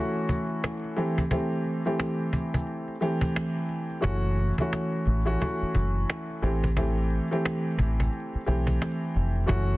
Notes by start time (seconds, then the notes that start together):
Already playing: E3 A3 C#4 F#4
0.16 cajon slap
0.29 cajon bass
0.50 cajon slap
0.64 cajon slap
0.84 cajon slap
0.96 E3 A3 C4 G4, cajon slap
1.18 cajon bass
1.31 E3 A3 C4 G4, cajon bass
1.52 cajon slap
1.64 cajon slap
1.85 E3 A3 C4 G4, cajon slap
2.00 cajon slap
2.19 cajon slap
2.33 cajon bass
2.54 cajon bass
2.67 cajon slap
2.88 cajon slap
3.00 E3 A3 C4 G4, cajon slap
3.21 cajon bass
3.36 cajon slap
3.56 cajon slap
3.69 cajon slap
3.90 cajon slap
4.01 F#1 E3 A3 C#4 F#4, cajon bass
4.25 cajon slap
4.37 cajon slap
4.58 E3 A3 C#4 F#4, cajon bass
4.73 cajon slap
4.92 cajon slap
5.06 A1, cajon slap
5.25 E3 A3 C#4 F#4, cajon slap
5.41 E3 A3 C#4 F#4, cajon bass
5.61 muted fingered electric bass stroke, cajon slap
5.75 F#1, cajon bass
5.95 cajon slap
6.10 cajon slap
6.30 cajon slap
6.42 A1 E3 A3 C4 G4, cajon slap
6.64 cajon bass
6.77 E3 A3 C4 G4, cajon bass
6.98 cajon slap
7.10 cajon slap
7.31 E3 A3 C4 G4, cajon slap
7.46 cajon slap
7.65 cajon slap
7.79 A1, cajon bass
8.00 cajon bass
8.13 cajon slap
8.34 muted fingered electric bass stroke, cajon slap
8.46 B1 E3 A3 C4 G4, cajon slap
8.67 cajon bass
8.82 cajon slap
9.02 cajon slap
9.15 F1, cajon slap
9.36 cajon slap
9.46 F#1 E3 A3 C#4 F#4, cajon bass
9.70 cajon slap